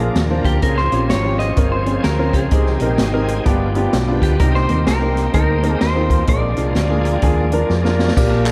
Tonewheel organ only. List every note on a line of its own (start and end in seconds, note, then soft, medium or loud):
0.00 0.60 F3 medium
0.00 0.60 A#3 medium
0.00 0.60 D4 medium
0.00 0.63 A#4 medium
0.62 2.47 F3 medium
0.62 2.47 C4 medium
0.62 2.47 C#4 medium
0.62 0.69 G4 medium
0.67 2.50 G#4 medium
2.52 3.44 G#3 medium
2.52 3.45 C4 medium
2.52 3.44 D#4 medium
2.52 2.59 G4 medium
2.58 3.47 G#4 medium
3.44 4.37 F3 medium
3.44 3.52 A#3 medium
3.44 4.38 D4 medium
3.44 4.38 G4 medium
3.51 4.41 B3 medium
4.41 6.26 A#3 medium
4.41 6.26 C4 medium
4.41 6.25 D#4 medium
4.41 6.26 G4 medium
6.28 8.13 F3 medium
6.28 8.13 A#3 medium
6.28 8.14 D4 medium
6.28 8.13 G#4 medium
8.16 8.52 F3 medium
8.16 8.52 A#3 medium
8.16 8.52 D4 medium
8.16 8.52 A#4 medium